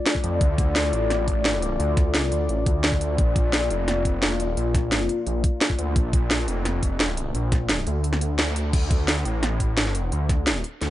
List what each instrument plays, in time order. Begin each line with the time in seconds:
Already playing: analog synth pad A3 F4 D5
0.06 snare, closed hi-hat
0.15 kick
0.24 detuned saw bass F2, closed hi-hat
0.41 detuned saw bass D2, kick, closed hi-hat
0.58 kick, closed hi-hat
0.76 snare, closed hi-hat
0.93 detuned saw bass A1, closed hi-hat
1.10 snare, closed hi-hat
1.28 kick, closed hi-hat
1.45 snare, closed hi-hat
1.62 closed hi-hat
1.80 detuned saw bass D2, closed hi-hat
1.97 kick, snare, closed hi-hat
2.14 snare, closed hi-hat
2.32 detuned saw bass D2, closed hi-hat
2.49 detuned saw bass A1, closed hi-hat
2.66 detuned saw bass D2, kick, closed hi-hat
2.84 snare, closed hi-hat
2.92 kick
3.01 closed hi-hat
3.18 detuned saw bass A#1, analog synth pad A#3 F4, kick, closed hi-hat
3.36 kick, closed hi-hat
3.53 snare, closed hi-hat
3.70 detuned saw bass F1, closed hi-hat
3.88 snare, closed hi-hat
4.05 kick, closed hi-hat
4.22 snare, closed hi-hat
4.30 detuned saw bass E1
4.40 closed hi-hat
4.57 detuned saw bass A#1, closed hi-hat
4.75 kick, snare, closed hi-hat
4.92 snare, closed hi-hat
5.09 closed hi-hat
5.27 detuned saw bass A#1, closed hi-hat
5.44 kick, closed hi-hat
5.61 snare, closed hi-hat
5.70 kick
5.79 detuned saw bass D2, closed hi-hat
5.96 detuned saw bass A#1, kick, closed hi-hat
6.13 kick, closed hi-hat
6.31 snare, closed hi-hat
6.48 detuned saw bass F1, closed hi-hat
6.65 snare, closed hi-hat
6.83 kick, closed hi-hat
7.00 snare, closed hi-hat
7.17 closed hi-hat
7.35 detuned saw bass A#1, closed hi-hat
7.52 kick, snare, closed hi-hat
7.69 snare, closed hi-hat
7.87 detuned saw bass D2, closed hi-hat
8.04 closed hi-hat
8.13 snare
8.21 closed hi-hat
8.39 snare, closed hi-hat
8.56 closed hi-hat
8.73 detuned saw bass D2, kick, closed hi-hat, crash
8.91 kick, closed hi-hat
9.08 snare, closed hi-hat
9.25 detuned saw bass A1, closed hi-hat
9.43 snare, closed hi-hat
9.60 kick, closed hi-hat
9.77 snare, closed hi-hat
9.86 snare
9.95 closed hi-hat
10.12 detuned saw bass D2, closed hi-hat
10.29 kick, snare, closed hi-hat
10.47 snare, closed hi-hat
10.64 closed hi-hat
10.81 detuned saw bass D2, snare, closed hi-hat